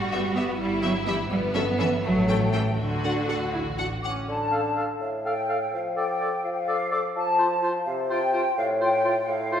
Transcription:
Already playing: G1 G3 F#4
0.12 B3 G4 E5
0.35 B3 G4 E5
0.59 G1 G3 E4
0.83 F#3 B3 G4 E5
1.07 E3 B3 G4 E5
1.30 G1 G3 B3
1.55 F#3 C#4 A4 E5
1.79 E3 C#4 A4 E5
2.03 A1 F#3 A3
2.28 C#4 A4 G5
2.53 E3 C#4 A4 G5
2.78 D2 D3 F#4
3.03 D4 A4 F#5
3.28 D4 A4 F#5
3.53 A1 E4
3.78 D4 F#5
4.02 C#4 F#5 D6
4.28 D3 A5
4.52 A4 F5
4.76 A4 F5 A5
5.00 A2 F5
5.24 A4 F5 G5
5.49 A4 F5
5.73 F3 F5
5.96 A4 D5 G5
6.21 A4 D5
6.44 F3 F5
6.51 G5
6.58 F5
6.67 A4 D5
6.91 A4 D5 D6
7.15 F3 A5
7.39 F4 C5
7.62 F4 C5 A5
7.85 C3 F5
8.09 F4 C5 G5
8.33 F4 C5
8.57 A2 F5
8.81 F4 C5 G5
9.05 F4 C5
9.28 A2 F5
9.52 F4 C5

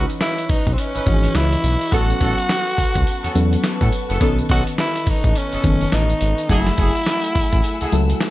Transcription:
Already playing: E3 C#4 D#4 B4 C#5 D#5 C#6
0.10 closed hi-hat
0.21 E4, snare, clap, closed hi-hat, tambourine
0.38 closed hi-hat
0.49 B1 D#4, kick, open hi-hat, tambourine
0.67 B1, kick, closed hi-hat
0.73 C4
0.78 C#4, closed hi-hat, tambourine
0.95 G#1 C#4 D#4 E4 B4, closed hi-hat
1.06 G#1 E3 C#4 F#4 D#5, kick, closed hi-hat
1.14 G#4
1.24 closed hi-hat
1.35 C#2 E4, snare, clap, closed hi-hat, tambourine
1.52 closed hi-hat
1.64 B1, closed hi-hat, tambourine
1.81 closed hi-hat
1.92 A1 F#3 B3 C#4 F#4 A4 B4 F#5 A5, kick, closed hi-hat, tambourine
2.10 closed hi-hat
2.20 A1 B3 C#4 F#4 A4, kick, closed hi-hat, tambourine
2.38 closed hi-hat
2.49 snare, clap, closed hi-hat, tambourine
2.67 closed hi-hat
2.78 C#2, kick, open hi-hat, tambourine
2.95 C#2, kick, closed hi-hat
3.07 closed hi-hat, tambourine
3.23 E2 B3 C#4 F#4 A4, closed hi-hat
3.34 E2 F#3 B3 C#4 A4, closed hi-hat
3.53 closed hi-hat
3.64 snare, clap, closed hi-hat, tambourine
3.81 A2 B3 C#4 F#4 A4, kick, closed hi-hat
3.92 closed hi-hat, tambourine
4.09 F#1 B3 C#4 F#4 A4, closed hi-hat
4.20 B1 D#3 B3 C#4 D#4 A4 D#5, kick, closed hi-hat, tambourine
4.38 closed hi-hat
4.49 B1 B3 C#4 D#4 F#4 A4, kick, closed hi-hat, tambourine
4.67 closed hi-hat
4.78 E4, snare, clap, closed hi-hat, tambourine
4.96 closed hi-hat
5.07 A1 D#4, kick, open hi-hat, tambourine
5.24 A1, kick, closed hi-hat
5.35 C#4, closed hi-hat, tambourine
5.52 F#1 B3 C#4 D#4 A4, closed hi-hat
5.63 F#1 D#3 B3 C#4 A4, kick, closed hi-hat
5.81 closed hi-hat
5.92 A1 D#4, snare, clap, closed hi-hat, tambourine
6.10 closed hi-hat
6.21 G#1, closed hi-hat, tambourine
6.38 closed hi-hat
6.49 F#1 F#3 A3 E4 F#4 G#4 F#5 G#5 E6, kick, closed hi-hat, tambourine
6.67 snare, closed hi-hat
6.78 F#1 A3 E4 F#4 G#4, kick, closed hi-hat, tambourine
6.95 closed hi-hat
7.06 snare, clap, closed hi-hat, tambourine
7.24 closed hi-hat
7.35 A1, kick, open hi-hat, tambourine
7.53 A1, kick, closed hi-hat
7.64 closed hi-hat, tambourine
7.81 C#2 A3 E4 F#4 G#4, closed hi-hat
7.92 C#2 F#3 A3 E4 A4, closed hi-hat
8.10 closed hi-hat
8.21 snare, clap, closed hi-hat, tambourine

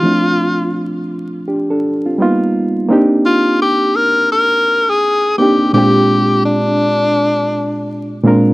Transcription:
Already playing: F4
0.03 F3 A3 C4 D4 E4
0.13 F4
1.48 D4 G4
1.70 D4 A4
2.06 C4 F4
2.18 G3 A#3 B3 D#4 F4
2.89 A#3 C4 D4 D#4 G4
3.25 F4
3.62 G4
3.96 A#4
4.32 A#4
4.89 G#4
5.38 A#3 C4 D4 D#4 G4
5.42 G4
5.73 A#2 G#3 C4 D4 F4 G4
5.78 G4
6.45 D4
8.23 A#2 G#3 C4 D4 F4
8.28 A#4

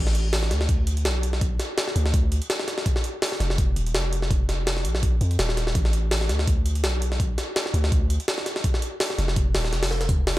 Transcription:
Already playing: A1
0.07 snare
0.15 closed hi-hat
0.33 snare, open hi-hat
0.43 snare
0.51 D2, snare, closed hi-hat
0.61 snare
0.69 kick, closed hi-hat
0.87 closed hi-hat
0.97 closed hi-hat
1.05 B1, snare, closed hi-hat
1.23 closed hi-hat
1.33 snare
1.41 kick, closed hi-hat
1.60 snare, closed hi-hat
1.78 snare, closed hi-hat
1.88 snare
1.96 D2, closed hi-hat
2.06 snare
2.14 kick, closed hi-hat
2.32 closed hi-hat
2.42 closed hi-hat
2.50 snare, closed hi-hat
2.60 snare
2.68 snare, closed hi-hat
2.78 snare
2.86 kick, closed hi-hat
2.96 snare
3.04 closed hi-hat
3.22 snare, open hi-hat
3.32 snare
3.40 F1, snare, closed hi-hat
3.50 snare
3.58 kick, closed hi-hat
3.76 D#1, closed hi-hat
3.86 closed hi-hat
3.95 F1, snare, closed hi-hat
4.13 closed hi-hat
4.22 snare
4.31 kick, closed hi-hat
4.49 snare, closed hi-hat
4.67 snare, closed hi-hat
4.77 snare
4.85 A#1, closed hi-hat
4.95 snare
5.03 kick, closed hi-hat
5.21 F2, closed hi-hat
5.31 closed hi-hat
5.39 D#1, snare, closed hi-hat
5.49 snare
5.57 snare, closed hi-hat
5.67 snare
5.75 A1, kick, closed hi-hat
5.85 snare
5.93 closed hi-hat
6.11 snare, open hi-hat
6.21 snare
6.29 D2, snare, closed hi-hat
6.39 snare
6.47 kick, closed hi-hat
6.66 closed hi-hat
6.75 closed hi-hat
6.84 B1, snare, closed hi-hat
7.02 closed hi-hat
7.12 snare
7.20 kick, closed hi-hat
7.38 snare, closed hi-hat
7.56 snare, closed hi-hat
7.66 snare
7.74 D2, closed hi-hat
7.84 snare
7.92 kick, closed hi-hat
8.10 closed hi-hat
8.20 closed hi-hat
8.28 snare, closed hi-hat
8.38 snare
8.46 snare, closed hi-hat
8.56 snare
8.64 kick, closed hi-hat
8.74 snare
8.82 closed hi-hat
9.00 snare, open hi-hat
9.10 snare
9.18 F1, snare, closed hi-hat
9.28 snare
9.36 kick, closed hi-hat
9.55 D#1, snare, open hi-hat
9.65 snare
9.73 F1, snare, closed hi-hat
9.83 snare, open hi-hat
9.91 snare
10.01 snare, closed hi-hat
10.09 kick, closed hi-hat
10.27 snare, open hi-hat

